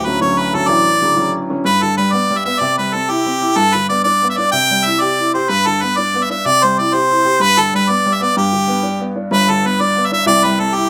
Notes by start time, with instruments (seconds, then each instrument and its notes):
Already playing: upright piano D1 D2
0.06 upright piano D3 F#3 C#4, harmonica B4
0.21 upright piano D3 F#3 C#4, harmonica C#5
0.38 harmonica B4
0.54 upright piano D3 F#3 C#4, harmonica A4
0.68 upright piano A1, harmonica D5
1.01 upright piano C#3 D3 F#3
1.17 upright piano D3 F#3 C#4
1.50 upright piano D3 F#3 C#4
1.65 upright piano G2, harmonica B4
1.82 upright piano D3, harmonica A4
1.97 upright piano G3, harmonica B4
2.12 upright piano B3, harmonica D5
2.31 upright piano G3
2.38 harmonica E5
2.45 upright piano B3, harmonica E5
2.60 upright piano C3, harmonica D5
2.78 upright piano G3, harmonica B4
2.93 upright piano C4, harmonica A4
3.09 upright piano E4, harmonica G4
3.26 upright piano C4
3.41 upright piano E4
3.56 upright piano G2, harmonica A4
3.74 upright piano D3, harmonica B4
3.89 upright piano B3, harmonica D5
4.04 upright piano D4, harmonica D5
4.23 upright piano B3
4.30 harmonica E5
4.37 upright piano D4, harmonica D5
4.52 upright piano C3, harmonica G5
4.71 upright piano G3
4.85 upright piano E4, harmonica E5
5.01 upright piano G4, harmonica D5
5.19 upright piano E4
5.34 upright piano G4, harmonica C5
5.49 upright piano G2, harmonica B4
5.67 upright piano D3, harmonica A4
5.82 upright piano B3, harmonica B4
5.97 upright piano D4, harmonica D5
6.14 upright piano B3
6.23 harmonica E5
6.30 upright piano D4, harmonica E5
6.45 upright piano C3, harmonica D5
6.63 upright piano G3, harmonica C5
6.79 upright piano E4, harmonica D5
6.93 upright piano G4, harmonica C5
7.10 upright piano E4
7.25 upright piano G4
7.40 upright piano G2, harmonica B4
7.57 upright piano D3, harmonica A4
7.73 upright piano G3, harmonica B4
7.88 upright piano B3, harmonica D5
8.06 upright piano G3
8.14 harmonica E5
8.21 upright piano B3, harmonica D5
8.37 upright piano G2, harmonica G4
8.53 upright piano D3
8.67 upright piano B3
8.83 upright piano D4
9.00 upright piano B3
9.16 upright piano D4
9.31 upright piano G1 G2, harmonica B4
9.49 upright piano D3, harmonica A4
9.63 upright piano B3, harmonica B4
9.80 upright piano D4, harmonica D5
9.96 upright piano B3
10.06 harmonica E5
10.12 upright piano D4, harmonica E5
10.26 upright piano C2 C3, harmonica D5
10.44 upright piano G3, harmonica B4
10.59 upright piano C4, harmonica A4
10.74 upright piano E4, harmonica G4